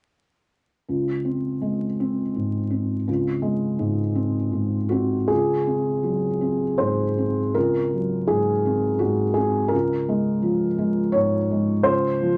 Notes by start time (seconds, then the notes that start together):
0.88 C#2
1.25 C4
1.61 G#3
2.00 C4
2.36 G#2
2.71 C4
3.08 C#2
3.42 G#3
3.79 G#2
4.15 C4
4.52 G#2
4.89 C4 F#4
5.28 C#2 G#4
5.67 C4
6.03 F#3
6.41 C4
6.78 G#2 C5
7.18 C4
7.54 C#2 A#4
7.94 F#3
8.27 G#2 G#4
8.66 C4
8.99 G#2 F#4
9.34 C4 G#4
9.68 C#2 A#4
10.09 G#3
10.42 F3
10.78 G#3
11.12 G#2 C#5
11.51 G#3
11.83 C#2 C5
12.22 F3